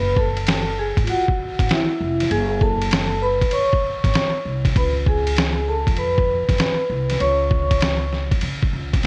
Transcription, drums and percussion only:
0.16 kick medium
0.37 ride medium
0.47 snare loud
0.47 hi-hat pedal soft
0.47 ride medium
0.97 kick medium
0.97 ride medium
1.07 ride medium
1.28 kick medium
1.59 kick medium
1.59 snare soft
1.59 ride medium
1.69 snare loud
1.69 hi-hat pedal soft
1.69 ride medium
2.20 snare soft
2.20 ride medium
2.31 ride medium
2.61 kick medium
2.82 ride medium
2.91 snare loud
2.91 hi-hat pedal soft
2.91 ride medium
3.42 kick medium
3.42 ride medium
3.51 ride medium
3.73 kick medium
4.04 kick medium
4.04 snare soft
4.04 ride medium
4.14 snare loud
4.14 hi-hat pedal soft
4.14 ride medium
4.64 kick medium
4.64 snare soft
4.64 ride medium
4.75 kick loud
4.75 ride medium
5.06 kick medium
5.27 ride medium
5.36 snare loud
5.36 hi-hat pedal soft
5.36 ride medium
5.87 kick medium
5.87 ride medium
5.97 ride medium
6.18 kick medium
6.49 kick medium
6.49 snare soft
6.49 ride medium
6.58 snare loud
6.58 hi-hat pedal soft
6.58 ride medium
7.10 snare soft
7.10 ride medium
7.20 ride medium
7.51 kick medium
7.71 kick medium
7.71 ride medium
7.81 snare loud
7.81 hi-hat pedal soft
7.81 ride medium
8.13 snare soft
8.32 kick medium
8.32 ride soft
8.41 ride medium
8.63 kick medium
8.94 kick medium
8.94 snare soft
8.94 ride medium
9.03 hi-hat pedal soft
9.03 ride medium

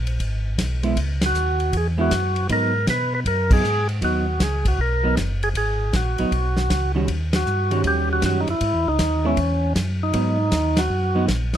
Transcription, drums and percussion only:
0.07 ride soft
0.20 kick soft
0.20 ride medium
0.58 kick soft
0.58 snare medium
0.58 hi-hat pedal soft
0.58 ride medium
0.83 ride soft
0.96 kick soft
0.96 ride medium
1.21 snare medium
1.21 ride medium
1.35 hi-hat pedal medium
1.60 ride soft
1.73 kick soft
1.73 ride medium
2.11 kick soft
2.11 snare medium
2.11 hi-hat pedal medium
2.11 ride medium
2.36 ride soft
2.49 kick soft
2.49 ride medium
2.87 kick soft
2.87 snare medium
2.87 hi-hat pedal medium
2.87 ride medium
3.26 kick soft
3.26 ride medium
3.51 kick medium
3.51 crash medium
3.64 hi-hat pedal soft
3.89 ride soft
4.02 kick soft
4.02 ride medium
4.40 kick soft
4.40 snare medium
4.40 hi-hat pedal medium
4.40 ride medium
4.65 kick soft
4.65 ride medium
4.79 kick soft
5.17 kick soft
5.17 snare medium
5.17 hi-hat pedal soft
5.17 ride medium
5.43 ride soft
5.55 kick soft
5.55 ride medium
5.93 kick soft
5.93 snare medium
5.93 hi-hat pedal medium
5.93 ride medium
6.18 ride soft
6.32 kick soft
6.32 ride medium
6.57 snare medium
6.70 kick soft
6.70 snare medium
6.70 hi-hat pedal soft
6.70 ride medium
7.08 kick soft
7.08 ride medium
7.33 snare medium
7.33 ride medium
7.46 hi-hat pedal medium
7.71 ride soft
7.84 kick soft
7.84 ride medium
8.22 kick soft
8.22 snare medium
8.22 hi-hat pedal soft
8.22 ride medium
8.48 ride soft
8.61 kick soft
8.61 ride medium
8.99 kick soft
8.99 snare medium
8.99 hi-hat pedal medium
8.99 ride medium
9.37 kick soft
9.37 ride medium
9.75 kick soft
9.75 snare medium
9.75 hi-hat pedal medium
9.75 ride medium
10.14 kick soft
10.14 ride medium
10.52 kick soft
10.52 snare medium
10.52 hi-hat pedal medium
10.52 ride medium
10.77 snare medium
10.77 ride medium
11.28 kick soft
11.28 snare medium
11.28 hi-hat pedal soft
11.28 ride medium
11.53 snare soft
11.53 ride soft

